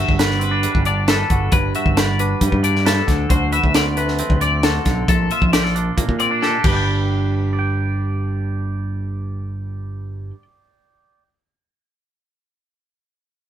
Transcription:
Already playing: clean electric guitar G2 F#4 E5
0.09 fingered electric bass G1, kick
0.19 clean electric guitar B4 D5, snare, closed hi-hat
0.31 snare
0.39 clean electric guitar C4 B4, closed hi-hat
0.51 clean electric guitar D4
0.63 clean electric guitar G3, closed hi-hat
0.75 fingered electric bass G1, kick
0.85 clean electric guitar D4 D5, closed hi-hat
1.08 clean electric guitar A4 B4, snare, closed hi-hat
1.30 fingered electric bass G1, clean electric guitar F#4, kick, closed hi-hat
1.52 fingered electric bass G1, clean electric guitar G2 B4, kick, closed hi-hat
1.75 clean electric guitar F#4 E5, closed hi-hat
1.86 fingered electric bass G1, kick
1.97 clean electric guitar B4 D5, snare, closed hi-hat
2.19 clean electric guitar D4 B4, closed hi-hat
2.41 fingered electric bass G2, clean electric guitar G3, kick, closed hi-hat
2.52 fingered electric bass G2, kick
2.63 clean electric guitar D4 D5, closed hi-hat
2.76 snare
2.85 clean electric guitar A4 B4, snare, closed hi-hat
3.07 fingered electric bass D2, clean electric guitar D3, kick, snare, closed hi-hat
3.29 fingered electric bass D2, clean electric guitar F#4 C5, kick, closed hi-hat
3.52 clean electric guitar B4 E5, closed hi-hat
3.64 fingered electric bass D2, kick
3.74 clean electric guitar C4 D5, snare, closed hi-hat
3.96 clean electric guitar A3 B4, closed hi-hat
4.08 snare
4.19 clean electric guitar C4, closed hi-hat
4.30 fingered electric bass D2, kick
4.41 clean electric guitar D5, closed hi-hat
4.63 clean electric guitar F#4 A4, snare, closed hi-hat
4.85 fingered electric bass B1, clean electric guitar D3, kick, snare, closed hi-hat
5.08 fingered electric bass A#1, clean electric guitar A#2 A4, kick, closed hi-hat
5.31 clean electric guitar F4 E5, closed hi-hat
5.42 fingered electric bass A#1, kick
5.53 clean electric guitar G4 D5, snare, closed hi-hat
5.63 clean electric guitar A4, snare
5.75 clean electric guitar D4, closed hi-hat
5.97 fingered electric bass A#2, clean electric guitar A#3, kick, closed hi-hat
6.08 fingered electric bass A#2, kick
6.19 clean electric guitar C4 D5, closed hi-hat
6.31 clean electric guitar D4
6.42 clean electric guitar G4 A4, snare
6.64 fingered electric bass G1, clean electric guitar G2 G3 G4, kick, crash
6.68 clean electric guitar D4 B4
6.72 clean electric guitar B4 D5
6.77 clean electric guitar G5
7.53 clean electric guitar D5
7.59 clean electric guitar G5

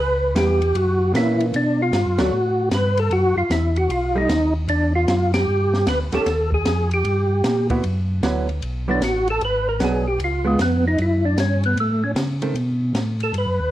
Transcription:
Already playing: tonewheel organ C#2
0.00 tonewheel organ B4
0.35 tonewheel organ E2 G4, hollow-body jazz guitar G3 B3 E4, snare, hi-hat pedal, ride
0.62 ride
0.75 tonewheel organ F#2 F#4, ride
1.13 tonewheel organ A#2 E4, hollow-body jazz guitar E3 A#3 C#4, snare, hi-hat pedal, ride
1.40 ride
1.54 tonewheel organ B2 D4, ride
1.82 tonewheel organ F4
1.92 tonewheel organ G2, snare, hi-hat pedal, ride
2.06 tonewheel organ F#2
2.19 tonewheel organ D2 F#4, hollow-body jazz guitar F#3 A3 D4, snare, ride
2.33 tonewheel organ A2
2.71 tonewheel organ G2 B4, snare, hi-hat pedal, ride
2.97 tonewheel organ A4, ride
3.11 tonewheel organ F#2 F#4, ride
3.37 tonewheel organ F#2 F4
3.50 tonewheel organ E2 E4, snare, hi-hat pedal, ride
3.76 tonewheel organ F#4, ride
3.89 tonewheel organ B1 F4, ride
4.16 hollow-body jazz guitar G3 A3 D#4, tonewheel organ D#4
4.29 tonewheel organ D#2, snare, hi-hat pedal, ride
4.68 tonewheel organ E2 D4, ride
4.96 tonewheel organ F4
5.08 tonewheel organ F#2, snare, hi-hat pedal, ride
5.34 tonewheel organ G4, snare, ride
5.48 tonewheel organ G2
5.74 snare
5.86 tonewheel organ D2 B4, snare, hi-hat pedal, ride
6.12 tonewheel organ D2 A4, hollow-body jazz guitar D#3 A3 C#4 G4, snare, ride
6.26 tonewheel organ D#2, snare, ride
6.52 tonewheel organ G#4, kick
6.65 tonewheel organ F2, snare, hi-hat pedal, ride
6.91 tonewheel organ G4, ride
7.04 tonewheel organ G2, ride
7.44 tonewheel organ A#2, snare, hi-hat pedal, ride
7.70 hollow-body jazz guitar D3 B3 E4 F#4, kick, ride
7.83 tonewheel organ F#2, ride
8.23 tonewheel organ D2, hollow-body jazz guitar D3 F#3 B3 E4, snare, hi-hat pedal, ride
8.49 ride
8.62 tonewheel organ B1, ride
8.88 hollow-body jazz guitar D3 F#3 B3 E4, tonewheel organ D4
9.01 tonewheel organ A1 F#4, snare, hi-hat pedal, ride
9.27 tonewheel organ A4, ride
9.41 tonewheel organ G#1 B4, ride
9.69 tonewheel organ A#4
9.80 tonewheel organ B1 G#4, hollow-body jazz guitar F#3 B3 D4, snare, hi-hat pedal, ride
10.08 tonewheel organ G4
10.19 tonewheel organ C#2, ride
10.24 tonewheel organ F4
10.45 hollow-body jazz guitar G#3 B3 F4, tonewheel organ G#3
10.59 tonewheel organ F2 B3, snare, hi-hat pedal, ride
10.88 tonewheel organ D#4
10.98 tonewheel organ F#2 E4, ride
11.25 tonewheel organ D4
11.37 tonewheel organ G2 C#4, snare, hi-hat pedal, ride
11.63 tonewheel organ B3, ride
11.76 tonewheel organ A2, ride
11.80 tonewheel organ A3
12.04 tonewheel organ C#4
12.15 tonewheel organ C#3, snare, hi-hat pedal, ride
12.42 hollow-body jazz guitar D#3 A3 C4, ride
12.54 tonewheel organ B2, ride
12.94 tonewheel organ A2, snare, hi-hat pedal, ride
13.20 tonewheel organ A4, ride
13.33 tonewheel organ G2, ride
13.38 tonewheel organ B4
13.46 tonewheel organ F#2
13.60 tonewheel organ D#2

